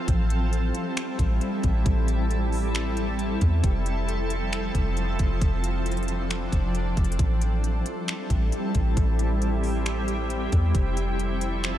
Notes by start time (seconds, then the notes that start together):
Already playing: C4 A4
0.08 A1 G3 E4, kick, closed hi-hat
0.30 closed hi-hat
0.53 closed hi-hat
0.75 closed hi-hat
0.97 finger snap, closed hi-hat
1.19 A1, kick, closed hi-hat
1.41 closed hi-hat
1.63 A1, kick, closed hi-hat
1.86 A1, kick, closed hi-hat
2.08 closed hi-hat
2.31 closed hi-hat
2.52 open hi-hat
2.75 finger snap, closed hi-hat
2.97 closed hi-hat
3.19 closed hi-hat
3.41 E2, kick, closed hi-hat
3.64 F1 F3 C4, kick, closed hi-hat
3.86 closed hi-hat
4.08 closed hi-hat
4.30 closed hi-hat
4.53 finger snap, closed hi-hat
4.75 F1, kick, closed hi-hat
4.97 closed hi-hat
5.19 F1, kick, closed hi-hat
5.41 F1 D4, kick, closed hi-hat
5.64 closed hi-hat
5.86 closed hi-hat
5.92 closed hi-hat
5.97 closed hi-hat
6.03 closed hi-hat
6.08 closed hi-hat
6.30 finger snap, closed hi-hat
6.52 F1, kick, closed hi-hat
6.75 closed hi-hat
6.97 F1, kick, closed hi-hat
7.04 closed hi-hat
7.12 closed hi-hat
7.19 A1 G3 E4 A4, kick, closed hi-hat
7.42 closed hi-hat
7.64 closed hi-hat
7.86 closed hi-hat
8.08 finger snap, closed hi-hat
8.30 A1, kick, closed hi-hat
8.52 closed hi-hat
8.75 A1, kick, closed hi-hat
8.97 A1 G4, kick, closed hi-hat
9.19 closed hi-hat
9.42 closed hi-hat
9.64 open hi-hat
9.86 finger snap, closed hi-hat
10.08 closed hi-hat
10.30 closed hi-hat
10.52 E2, kick, closed hi-hat
10.75 F1 F3 A4, kick, closed hi-hat
10.97 closed hi-hat
11.19 closed hi-hat
11.41 closed hi-hat
11.64 finger snap, closed hi-hat